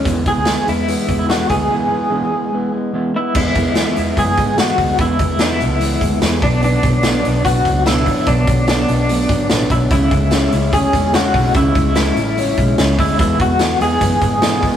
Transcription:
<<
  \new Staff \with { instrumentName = "Clean electric guitar" } { \time 4/4 \key e \mixolydian \tempo 4 = 146 r8 gis'4 e'4~ e'16 e'16 fis'8 gis'8~ | gis'2~ gis'8 r4 e'8 | e'2 gis'4 fis'4 | e'4 e'2 r8 d'8 |
d'2 fis'4 e'4 | d'4 d'2 r8 e'8 | e'2 gis'4 fis'4 | e'4 e'2 r8 e'8 |
e'8 fis'4 gis'2~ gis'8 | }
  \new Staff \with { instrumentName = "Clean electric guitar" } { \time 4/4 \key e \mixolydian <e e'>8 b8 e'8 gis8 b8 gis8 e'8 b8 | <e e'>8 b8 d'16 e'16 gis8 b8 gis8 e'8 b8 | e8 gis8 b8 e'8 b8 gis8 e'8 gis8 | e8 gis8 b8 d'16 e'16 b8 gis8 e'8 b,8 |
b,8 fis8 a16 b16 d'8 b8 fis8 d'8 fis8 | b,8 fis8 b8 d'8 a16 b16 fis8 d'8 fis8 | cis8 gis8 cis'8 e'8 cis'8 gis8 d'16 e'16 gis8 | cis8 gis8 b16 cis'16 e'8 cis'8 gis8 e'8 gis8 |
e8 gis8 b8 e'8 b8 gis8 e'8 gis8 | }
  \new Staff \with { instrumentName = "Clean electric guitar" } { \time 4/4 \key e \mixolydian <e gis b e'>8 <gis b e'>8 <e gis b e'>8 <gis b e'>8 <e gis b e'>8 <gis b e'>8 <e gis b e'>8 <gis b e'>8 | <e gis b e'>8 <gis b e'>8 <e gis b e'>8 <gis b e'>8 <e gis b e'>8 <gis b e'>8 <e gis b e'>8 <gis b e'>8 | <e gis b e'>8 <gis b e'>8 <e gis b e'>8 <gis b e'>8 <e gis b e'>8 <gis b>8 <e gis b e'>8 <gis b e'>8 | <e gis b e'>8 <gis b e'>8 <e gis b e'>8 <gis b>8 <e gis b e'>8 <gis b e'>8 <e gis b e'>8 <fis b>8 |
<b, fis b d'>8 <fis b d'>8 <b, fis b d'>8 <fis b d'>8 <b, fis b d'>8 <fis b d'>8 <b, fis b d'>8 <fis b d'>8 | <b, fis b d'>8 <fis b d'>8 <b, fis b d'>8 <fis b d'>8 <b, fis b d'>8 <fis b d'>8 <b, fis b d'>8 <fis b d'>8 | <cis gis cis' e'>8 <gis cis' e'>8 <cis gis cis' e'>8 <gis cis' e'>8 <cis gis cis' e'>8 <gis cis' e'>8 <cis gis cis' e'>8 <gis cis' e'>8 | <cis gis cis' e'>8 <gis cis'>8 <cis gis cis' e'>8 <gis cis' e'>8 <cis gis cis' e'>8 <gis cis' e'>8 <cis gis cis' e'>8 <gis cis' e'>8 |
<e gis b e'>8 <gis b e'>8 <e gis b e'>8 <gis b e'>8 <e gis b e'>8 <gis b e'>8 <e gis b e'>8 <gis b e'>8 | }
  \new Staff \with { instrumentName = "Fingered electric bass" } { \clef bass \time 4/4 \key e \mixolydian e,8. d,8 r16 e,8. r16 e,4 d,8 | r1 | e,8 e,8. r16 e,8 fis,8 gis,4 d,8 | e,8 e,4 cis,4 d,8 e,8 b,,8~ |
b,,8 b,,4 b,,8 b,,8 cis,4 a,,8 | b,,8 b,,4 b,,4 gis,,8 a,,8 b,,8 | cis,8 cis,4 cis,8 d,8 e,4 b,,8 | cis,8 cis,4 a,,4 b,,8 cis,8 d,8 |
e,8 e,4 e,8 fis,8 gis,4 d,8 | }
  \new DrumStaff \with { instrumentName = "Drums" } \drummode { \time 4/4 <hh bd>8 <hh bd>8 <hh sn>8 hh8 hh8 <hh bd>8 <hh sn>8 <hh bd>8 | r4 r4 r4 r4 | <cymc bd>8 <hh bd>8 <hh sn>8 hh8 <hh bd>8 <hh bd>8 <hh sn>8 <hho bd>8 | <hh bd>8 <hh bd>8 <hh sn>8 hh8 hh8 <hh bd>8 <hh sn>8 <hho bd>8 |
hh8 <hh bd>8 <hh sn>8 hh8 <hh bd>8 <hh bd>8 <hh sn>8 <hho bd>8 | <hh bd>8 <hh bd>8 <hh sn>8 hh8 hh8 <hh bd>8 <hh sn>8 <hh bd>8 | <hh bd>8 <hh bd>8 <hh sn>8 hh8 <hh bd>8 <hh bd>8 <hh sn>8 <hho bd>8 | <hh bd>8 <hh bd>8 <hh sn>8 hh8 hh8 <hh bd>8 <hh sn>8 <hho bd>8 |
<hh bd>8 <hh bd>8 <hh sn>8 hh8 <hh bd>8 <hh bd>8 <hh sn>8 <hho bd>8 | }
>>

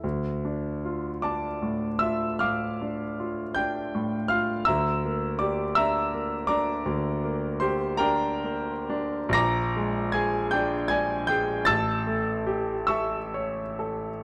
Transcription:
\new Staff \with { instrumentName = "Grand piano" } { \time 12/8 \key d \minor \tempo 4. = 52 << { r4. <d'' a'' d'''>4 <e'' e'''>8 <f'' d''' f'''>4. <g'' g'''>4 <f'' f'''>8 | <e'' bes'' e'''>4 <d'' d'''>8 <e'' bes'' e'''>4 <d'' bes'' d'''>4. <c'' c'''>8 <bes' g'' bes''>4. | <bes'' d''' bes'''>4 <aes'' aes'''>8 <g'' g'''>8 <aes'' aes'''>8 <g'' g'''>8 <a'' e''' a'''>4. <e'' cis''' e'''>4. | } \\ { d,8 d'8 f'8 d'8 a,8 f'8 a,8 d'8 f'8 d'8 a,8 f'8 | d,8 bes8 g'8 d'8 bes8 d'8 d,8 bes8 g'8 d'8 bes8 d'8 | bes,,8 aes8 aes'8 d'8 d''8 aes'8 a,,8 a8 g'8 a'8 cis''8 a'8 | } >> }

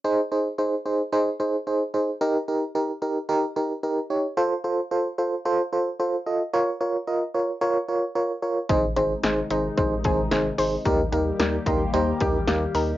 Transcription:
<<
  \new Staff \with { instrumentName = "FM electric piano" } { \time 4/4 \key aes \major \tempo 4 = 111 <ees' aes' c''>8 <ees' aes' c''>8 <ees' aes' c''>8 <ees' aes' c''>8 <ees' aes' c''>8 <ees' aes' c''>8 <ees' aes' c''>8 <ees' aes' c''>8 | <ees' g' bes'>8 <ees' g' bes'>8 <ees' g' bes'>8 <ees' g' bes'>8 <ees' g' bes'>8 <ees' g' bes'>8 <ees' g' bes'>8 <ees' g' des''>8 | <f' a' c''>8 <f' a' c''>8 <f' a' c''>8 <f' a' c''>8 <f' a' c''>8 <f' a' c''>8 <f' a' c''>8 <f' a' ees''>8 | <f' bes' des''>8 <f' bes' des''>8 <f' bes' ees''>8 <f' bes' des''>8 <f' bes' des''>8 <f' bes' des''>8 <f' bes' des''>8 <f' bes' des''>8 |
<ees' aes' c''>8 <ees' aes' c''>8 <ees' aes' c''>8 <ees' aes' c''>8 <ees' aes' c''>8 <ees' aes' c''>8 <ees' aes' c''>8 <ees' aes' c''>8 | <ees' g' bes'>8 <ees' g' bes'>8 <ees' g' bes'>8 <ees' g' bes' c'''>8 <ees' g' c'' bes''>8 <ees' g' bes' g''>8 <ees' g' bes' f''>8 <ees' g' bes' ees''>8 | }
  \new Staff \with { instrumentName = "Synth arpeggio sound" } { \time 4/4 \key aes \major r1 | r1 | r1 | r1 |
aes8 c'8 aes8 ees'8 aes8 aes'8 aes8 c''8 | g8 bes8 g8 ees'8 g8 g'8 g8 bes'8 | }
  \new Staff \with { instrumentName = "Analog synth pad" } { \clef bass \time 4/4 \key aes \major r1 | r1 | r1 | r1 |
<c ees aes ees'>1 | <ees g bes g'>1 | }
  \new Staff \with { instrumentName = "Analog synth bass" } { \clef bass \time 4/4 \key aes \major r1 | r1 | r1 | r1 |
aes,,8 aes,,8 aes,,8 aes,,8 aes,,8 aes,,8 aes,,8 aes,,8 | ees,8 ees,8 ees,8 ees,8 ees,8 ees,8 ees,8 ees,8 | }
  \new DrumStaff \with { instrumentName = "Drums" } \drummode { \time 4/4 r4 r4 r4 r4 | r4 r4 r4 r4 | r4 r4 r4 r4 | r4 r4 r4 r4 |
<hh bd>8 hh8 <hh sn>8 hh8 <hh bd>8 <hh bd>8 <hh sn>8 hho8 | <hh bd>8 hh8 <hh sn>8 <hh bd>8 hh8 <hh bd>8 <hh sn>8 hho8 | }
>>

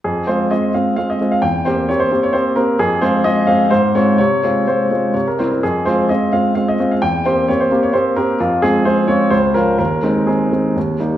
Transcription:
\new Staff \with { instrumentName = "Grand piano" } { \time 3/4 \key f \minor \tempo 4 = 128 << { aes'8 c''8 ees''8 f''8 f''16 ees''8 f''16 | g''8 c''8 des''16 c''8 des''16 c''8 bes'8 | aes'8 c''8 ees''8 f''8 c''8 des''8 | des''4 c''4 des''16 bes'16 c''16 bes'16 |
aes'8 c''8 ees''8 f''8 f''16 ees''8 f''16 | g''8 c''8 des''16 c''8 des''16 c''8 bes'8 | \key aes \major f'8 aes'8 c''8 des''8 c''8 bes'8 | bes'4 aes'4 r4 | } \\ { f,8 <aes c' f'>8 <aes c' f'>8 <aes c' f'>8 <aes c' f'>8 <aes c' f'>8 | e,8 <bes c' g'>8 <bes c' g'>8 <bes c' g'>8 <bes c' g'>8 <bes c' g'>8 | f,8 <aes c' f'>8 <aes c' f'>8 <aes c' f'>8 aes,8 <aes c' f'>8 | c8 <aes c' f'>8 <aes c' f'>8 <aes c' f'>8 c8 <g c' e'>8 |
f,8 <aes c' f'>8 <aes c' f'>8 <aes c' f'>8 <aes c' f'>8 <aes c' f'>8 | e,8 <bes c' g'>8 <bes c' g'>8 <bes c' g'>8 <bes c' g'>8 <bes c' g'>8 | f,8 <aes c' f'>8 <aes c' f'>8 <aes c' f'>8 des,8 <f des' f'>8 | ees,8 <aes c' ees'>8 <aes c' ees'>8 <aes c' ees'>8 ees,8 <g bes ees'>8 | } >> }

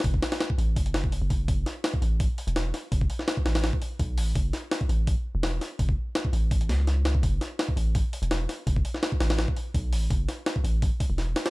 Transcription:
<<
  \new Staff \with { instrumentName = "808-style bass" } { \clef bass \time 4/4 \key fis \minor \tempo 4 = 167 fis,,8 r4 a,,8 fis,,4~ fis,,16 fis,,8. | fis,,8 r4 a,,8. r8 e,,8. r8 | fis,,8 r4 a,,8. r8. b,,8 a,,8 | fis,,8 r4 a,,8. r8 e,,8. r8 |
fis,,8 r4 a,,4 cis,4. | fis,,8 r4 a,,8. r8 e,,8. r8 | fis,,8 r4 a,,8. r8. b,,8 a,,8 | fis,,8 r4 a,,8. r8 e,,8. r8 | }
  \new DrumStaff \with { instrumentName = "Drums" } \drummode { \time 4/4 <hho bd>16 bd16 <hho sn>16 <hho sn>16 <hho sn>16 bd16 hho8 <hho bd>16 hh16 <hho sn>16 bd16 hho8 <hho bd>8 | <hho bd>8 <hho sn>8 <hho sn>16 bd16 hho8 <hho bd>8 hho16 hh16 <hho sn>8 <hho sn>8 | <hho bd>16 bd16 hho16 sn16 <hho sn>16 bd16 <hho sn>16 <hho sn>16 <hho sn>16 bd16 hho8 <hho bd>8 hho8 | <hho bd>8 <hho sn>8 <hho sn>16 bd16 hho8 <hho bd>4 <hho sn>8 <hho sn>8 |
<hho bd>16 bd8. <hho sn>16 bd16 hho8 <hho bd>16 hh16 <hho sn>8 <hho sn>8 <hho sn>16 bd16 | <hho bd>8 <hho sn>8 <hho sn>16 bd16 hho8 <hho bd>8 hho16 hh16 <hho sn>8 <hho sn>8 | <hho bd>16 bd16 hho16 sn16 <hho sn>16 bd16 <hho sn>16 <hho sn>16 <hho sn>16 bd16 hho8 <hho bd>8 hho8 | <hho bd>8 <hho sn>8 <hho sn>16 bd16 hho8 <hho bd>8 <hho bd>8 <hho sn>8 <hho sn>16 <hho sn>16 | }
>>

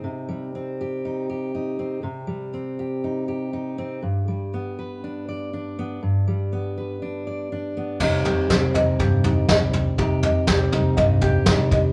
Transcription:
<<
  \new Staff \with { instrumentName = "Ukulele" } { \time 4/4 \key c \minor \tempo 4 = 121 r1 | r1 | r1 | r1 |
ees''8 g'4 ees''8 g'8 ees'8 ees''4 | ees'8 ees''8 g'8 ees'8 ees''8 g'8 ees'8 ees''8 | }
  \new Staff \with { instrumentName = "Steel-string acoustic guitar" } { \time 4/4 \key c \minor << { r4 c'8 g'8 ees'8 g'8 ees'8 c'8 | r4 c'8 g'8 ees'8 g'8 ees'8 c'8 | r4 b8 b'8 d'8 d''8 d'8 b8 | r4 b8 b'8 d'8 d''8 d'8 b8 |
<g c' ees' g'>4 c'8 ees'4 g'4. | g'4 c'8 ees'4 g'4. | } \\ { c8 g2.~ g8 | c8 g2.~ g8 | g,8 g2.~ g8 | g,8 g2.~ g8 |
c4 g4 g,4 g4 | c4 g4 g,4 g4 | } >> }
  \new Staff \with { instrumentName = "Upright bass" } { \clef bass \time 4/4 \key c \minor r1 | r1 | r1 | r1 |
c,8 r8 c,8 c,8 c,4 c,4 | c,8 r8 c,8 c,8 c,4 c,4 | }
  \new DrumStaff \with { instrumentName = "Drums" } \drummode { \time 4/4 r4 r4 r4 r4 | r4 r4 r4 r4 | r4 r4 r4 r4 | r4 r4 r4 r4 |
<cymc bd tomfh>8 tomfh8 <bd sn tomfh>8 tomfh8 <bd tomfh>8 tomfh8 <bd sn tomfh>8 tomfh8 | <bd tomfh>8 tomfh8 <bd sn tomfh>8 tomfh8 <bd tomfh>8 <bd tomfh>8 <bd sn tomfh>8 <bd tomfh>8 | }
>>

